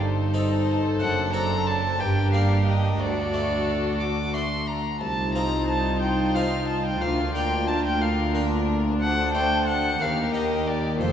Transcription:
Already playing: G1 G2
0.01 D#4 A4 C5
0.34 C4 D#4 A4
1.00 F#1 F#2 D4 F#5
1.33 C4 D4 A4 A#5
1.67 A5
1.99 G1 G2 G4 A#4 G5
2.33 A#3 D4 G4 F5
2.67 D#5
3.00 D2 F#4 A4 D5
3.33 A3 D4 F#4
4.01 D6
4.34 A3 D4 F#4 C6
4.67 A#5
5.01 C2 D#4 F4 C5 A5
5.35 C4 D#4 F4 A#5
5.68 A5
6.02 G5
6.35 C4 D#4 F4 F5
6.68 A5
6.86 G5
7.02 D2 D4 A#4 F5
7.35 A#3 D4 A#4 G5
7.68 A5
7.85 G5
8.02 F5
8.35 A#3 D4 A#4
9.01 A4 C5 F#5
9.34 A3 D4 C5 G5
9.68 F#5
10.01 D#2 A#3 G4 A#4 F5
10.34 G4 A#4 D#5
10.67 D5
11.00 F1 F2 F3 F4 A4 C5

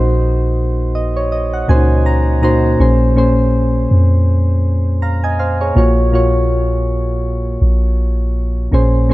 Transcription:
Already playing: A#1 A#2 A#3 D#4 F#4 C5
0.95 D#5
1.16 C#5
1.32 D#5
1.54 F#5
1.68 C#2 A#2 A#3 C#4 F#4 C5 G#5
1.76 D#4
2.06 A#5
2.42 A#2 A#3 D#4 F#4 C5 A#5
2.78 A#1 A#2 A#3 C#4 G#4 C5
3.15 A#2 A#3 C#4 G#4 C5
3.91 F2
5.02 F5 A#5
5.24 D#5 G#5
5.39 C5 F5
5.61 G#4 C#5
5.75 A#1 A#2 A#3 F4 F#4 C#5
6.12 A#2 A#3 F4 F#4 C#5
7.62 A#1
8.71 A#1 A#2 A#3 C#4 G#4 C5
9.08 A#2 A#3 C#4

